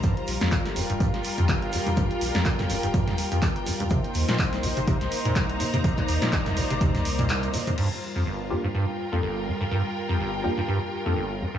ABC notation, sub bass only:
X:1
M:4/4
L:1/16
Q:"Swing 16ths" 1/4=124
K:Gm
V:1 name="Sub bass" clef=bass
G,,, z B,,, z3 F,,, D,,, z G,,, z6 | G,,, z B,,, z3 F,,, D,,, z G,,, z6 | C,, z E,, z3 B,,, G,,, z C,, z6 | C,, z E,, z3 B,,, G,,, E,, C,,4 z3 |
z16 | z16 |]